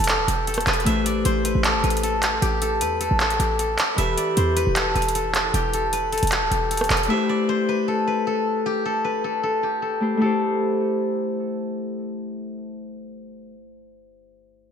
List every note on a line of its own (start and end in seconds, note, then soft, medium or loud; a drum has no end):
0.00 0.20 E1 loud
0.00 0.91 E3 medium
0.00 0.82 E4 medium
0.00 0.28 G4 medium
0.00 0.82 G4 medium
0.00 0.67 B4 medium
0.00 0.83 B4 medium
0.00 closed hi-hat medium
0.08 0.47 A4 medium
0.08 clap loud
0.08 closed hi-hat medium
0.19 0.27 D1 loud
0.28 0.65 E1 loud
0.28 2.42 G4 medium
0.28 closed hi-hat medium
0.47 1.63 A4 medium
0.47 closed hi-hat medium
0.54 cross-stick medium
0.54 closed hi-hat medium
0.61 closed hi-hat medium
0.67 0.86 E1 loud
0.67 1.31 B4 medium
0.67 clap loud
0.67 closed hi-hat medium
0.73 closed hi-hat soft
0.80 closed hi-hat soft
0.85 1.24 A1 loud
0.85 4.17 A3 medium
0.85 3.94 E4 medium
0.85 3.95 G4 medium
0.85 2.59 E5 loud
0.85 closed hi-hat medium
0.89 3.95 C5 medium
1.06 2.91 D5 medium
1.06 closed hi-hat medium
1.25 1.54 A1 loud
1.25 1.51 C5 medium
1.25 closed hi-hat medium
1.45 1.83 B4 medium
1.45 closed hi-hat medium
1.55 1.76 A1 loud
1.64 2.03 A4 medium
1.64 clap loud
1.64 closed hi-hat medium
1.75 1.83 G1 loud
1.84 2.40 A1 loud
1.84 2.81 B4 medium
1.84 closed hi-hat soft
1.90 closed hi-hat medium
1.97 closed hi-hat medium
2.03 2.61 A4 medium
2.03 closed hi-hat medium
2.23 clap loud
2.23 closed hi-hat medium
2.42 2.83 A1 loud
2.42 3.39 G4 loud
2.42 closed hi-hat medium
2.62 3.00 A4 medium
2.62 closed hi-hat medium
2.81 3.10 E2 loud
2.81 4.43 B4 medium
2.81 closed hi-hat medium
3.01 3.20 A4 medium
3.01 closed hi-hat medium
3.11 3.39 A1 loud
3.20 3.59 A4 medium
3.20 clap loud
3.20 closed hi-hat soft
3.30 closed hi-hat medium
3.39 3.77 A1 loud
3.39 5.54 G4 medium
3.39 closed hi-hat medium
3.59 4.76 A4 medium
3.59 closed hi-hat medium
3.79 clap loud
3.79 closed hi-hat medium
3.95 4.17 E1 loud
3.95 7.15 E3 medium
3.95 7.05 E4 medium
3.95 7.06 G4 medium
3.95 5.71 E5 loud
3.95 closed hi-hat medium
4.00 7.07 B4 medium
4.18 6.02 D5 medium
4.18 closed hi-hat medium
4.37 4.66 E2 loud
4.37 4.62 C5 medium
4.37 closed hi-hat medium
4.56 4.95 B4 medium
4.56 closed hi-hat medium
4.67 4.94 E1 loud
4.76 5.15 A4 medium
4.76 clap loud
4.76 closed hi-hat medium
4.95 5.52 E1 loud
4.95 5.92 B4 medium
4.95 closed hi-hat soft
5.02 closed hi-hat medium
5.09 closed hi-hat medium
5.15 5.73 A4 medium
5.15 closed hi-hat medium
5.35 clap loud
5.35 closed hi-hat medium
5.54 6.20 E1 loud
5.54 6.51 G4 medium
5.54 closed hi-hat medium
5.74 6.12 A4 medium
5.74 closed hi-hat medium
5.93 6.90 B4 medium
5.93 closed hi-hat medium
6.12 6.31 A4 medium
6.12 closed hi-hat soft
6.18 closed hi-hat medium
6.23 6.44 E1 loud
6.23 closed hi-hat medium
6.27 closed hi-hat medium
6.32 6.71 A4 medium
6.32 clap loud
6.32 closed hi-hat medium
6.42 6.51 D1 loud
6.51 6.89 E1 loud
6.51 8.66 G4 medium
6.51 closed hi-hat medium
6.71 7.88 A4 medium
6.71 closed hi-hat medium
6.77 cross-stick medium
6.77 closed hi-hat medium
6.84 closed hi-hat medium
6.90 7.09 E1 loud
6.90 7.55 B4 medium
6.90 clap loud
6.90 closed hi-hat medium
6.97 closed hi-hat soft
7.03 closed hi-hat soft
7.08 10.00 A3 medium
7.08 9.98 E4 medium
7.08 9.98 G4 medium
7.08 8.82 E5 loud
7.12 9.99 C5 medium
7.29 9.14 D5 medium
7.49 7.75 C5 medium
7.69 8.07 B4 medium
7.88 8.27 A4 medium
8.07 9.04 B4 medium
8.27 8.85 A4 medium
8.66 9.63 G4 medium
8.85 9.24 A4 medium
9.04 11.09 B4 medium
9.24 9.43 A4 medium
9.43 9.82 A4 medium
9.63 11.98 G4 medium
9.82 10.21 A4 medium
10.00 10.16 A3 medium
10.00 10.19 E4 soft
10.00 10.21 G4 soft
10.00 10.22 C5 medium
10.17 13.50 A3 medium
10.17 13.51 E4 medium
10.21 13.54 G4 medium
10.21 12.41 A4 medium
10.26 13.57 C5 medium